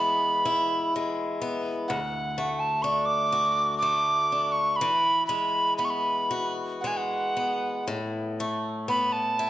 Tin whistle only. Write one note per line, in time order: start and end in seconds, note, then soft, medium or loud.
0.00 0.94 B5 medium
1.88 2.61 F#5 medium
2.59 2.84 A5 medium
2.82 3.07 C#6 medium
3.05 3.78 D6 medium
3.78 4.53 D6 medium
4.52 4.78 C#6 medium
4.76 5.26 B5 medium
5.27 5.74 B5 medium
5.78 5.86 B5 medium
5.85 5.92 C#6 soft
5.90 6.53 B5 medium
6.81 6.89 F#5 soft
6.87 6.98 G#5 soft
6.97 7.86 F#5 soft
8.89 9.14 B5 medium
9.12 9.50 A5 medium